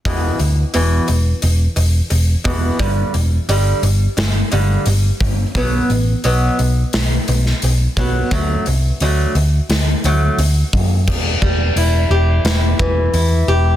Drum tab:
CC |----------------|----------------|----------------|----------------|
HH |o-o-o-o-o-o-o-o-|o-o-o-o-o-o-o-o-|o-o-o-o-o-o-o-o-|o-o-o-o-o-o-o-o-|
SD |----------------|--------o-------|--------o--o----|--------o-------|
BD |o-------------o-|o-------------o-|o-------------o-|o-------------o-|

CC |x---------------|
HH |----o---o---o---|
SD |--------o-------|
BD |o-o-------o-----|